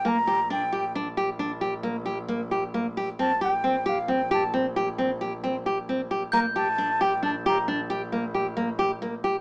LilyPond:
<<
  \new Staff \with { instrumentName = "Glockenspiel" } { \time 7/4 \key g \minor \tempo 4 = 134 r1. r4 | r1. r4 | g'''2. r1 | }
  \new Staff \with { instrumentName = "Flute" } { \time 7/4 \key g \minor bes''4 g''4 r1 r4 | a''8 g''4 f''8 g''8 a''8 r1 | bes''8 a''4 g''8 a''8 bes''8 r1 | }
  \new Staff \with { instrumentName = "Nylon-string guitar" } { \time 7/4 \key g \minor bes8 g'8 d'8 g'8 d'8 g'8 d'8 g'8 bes8 g'8 bes8 g'8 bes8 g'8 | c'8 g'8 c'8 g'8 c'8 g'8 c'8 g'8 c'8 g'8 c'8 g'8 c'8 g'8 | bes8 g'8 d'8 g'8 d'8 g'8 d'8 g'8 bes8 g'8 bes8 g'8 bes8 g'8 | }
  \new Staff \with { instrumentName = "Double bass" } { \clef bass \time 7/4 \key g \minor bes,,1.~ bes,,4 | bes,,1.~ bes,,4 | bes,,1.~ bes,,4 | }
>>